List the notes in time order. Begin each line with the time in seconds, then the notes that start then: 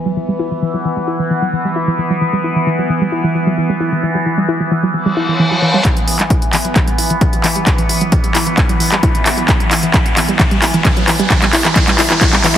Already playing: E3 B3, impact
0.06 F#3
0.17 E3
0.28 G3
0.39 E4
0.51 E3
0.62 E3
0.74 F#3
0.85 E3
0.97 G3
1.08 E4
1.19 E3
1.30 E3
1.42 F#3
1.53 E3
1.65 G3
1.76 E4
1.88 E3
1.98 E3
2.10 F#3
2.21 E3
2.33 G3
2.44 E4
2.56 E3
2.67 E3
2.78 F#3
2.89 E3
3.01 G3
3.12 E4
3.24 E3
3.35 E3
3.47 F#3
3.58 E3
3.69 G3
3.80 E4
3.92 E3
4.03 E3
4.15 F#3
4.26 E3
4.38 G3
4.48 E4
4.60 E3
4.71 E3
4.83 F#3
4.94 E3, reverse cymbal
5.06 G3
5.17 E4
5.28 E3
5.39 E3
5.51 F#3
5.62 E3
5.74 G3
5.85 E3 B3, kick, clap, closed hi-hat, riser
5.97 F#3, closed hi-hat
6.08 E3, open hi-hat
6.19 G3, clap, closed hi-hat
6.30 E4, kick, closed hi-hat
6.42 E3, closed hi-hat
6.53 E3, clap, open hi-hat
6.65 F#3, closed hi-hat
6.76 E3, kick, clap, closed hi-hat
6.87 G3, closed hi-hat
6.98 E4, open hi-hat
7.10 E3, closed hi-hat
7.21 E3, kick, closed hi-hat
7.33 F#3, closed hi-hat
7.44 E3, clap, open hi-hat
7.56 G3, closed hi-hat
7.67 E4, kick, clap, closed hi-hat
7.78 E3, closed hi-hat
7.89 E3, open hi-hat
8.01 F#3, closed hi-hat
8.12 E3, kick, closed hi-hat
8.24 G3, closed hi-hat
8.35 E4, clap, open hi-hat
8.47 E3, closed hi-hat
8.57 E3, kick, clap, closed hi-hat
8.69 F#3, closed hi-hat
8.80 E3, open hi-hat
8.92 G3, clap, closed hi-hat
9.03 E4, kick, closed hi-hat
9.15 E3, closed hi-hat
9.26 E3, clap, open hi-hat
9.37 F#3, closed hi-hat
9.48 E3, kick, clap, closed hi-hat
9.60 G3, closed hi-hat
9.71 E4, clap, open hi-hat
9.83 E3, closed hi-hat
9.94 E3, kick, clap, closed hi-hat
10.06 F#3, closed hi-hat
10.17 E3, clap, open hi-hat
10.28 G3, closed hi-hat
10.39 E3, kick, clap, closed hi-hat
10.51 G3, closed hi-hat
10.62 E4, clap, open hi-hat
10.74 E3, closed hi-hat
10.85 E3, kick, clap, closed hi-hat
10.97 F#3, closed hi-hat
11.08 E3, clap, open hi-hat
11.19 G3, closed hi-hat
11.30 E3, kick, clap, closed hi-hat
11.42 G3, clap, closed hi-hat
11.53 E4, clap, open hi-hat
11.65 E3, clap, closed hi-hat
11.76 E3, kick, clap, closed hi-hat
11.88 G3, clap, closed hi-hat
11.98 E4, clap, open hi-hat
12.10 E3, clap, closed hi-hat
12.21 E3, kick, clap, closed hi-hat, swell
12.33 G3, clap, closed hi-hat
12.44 E3, clap, open hi-hat